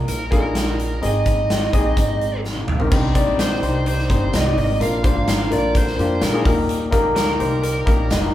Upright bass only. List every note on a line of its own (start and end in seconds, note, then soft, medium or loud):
0.08 0.99 A#1 medium
1.03 1.70 G#1 medium
1.74 1.95 A#1 medium
1.97 2.87 G#1 medium
2.92 3.25 C2 medium
3.27 3.60 A#1 medium
3.63 4.06 C2 medium
4.10 4.32 G1 medium
4.33 4.55 C2 medium
4.57 4.79 G#1 medium
4.80 5.13 A#1 loud
5.16 5.49 G#1 medium
5.51 5.95 A#1 medium
5.99 6.20 F2 medium
6.22 6.44 A#2 medium
6.45 7.00 D#2 medium
7.05 7.38 D2 medium
7.40 7.84 C2 medium
7.87 8.09 A#1 loud
8.10 8.32 F1 medium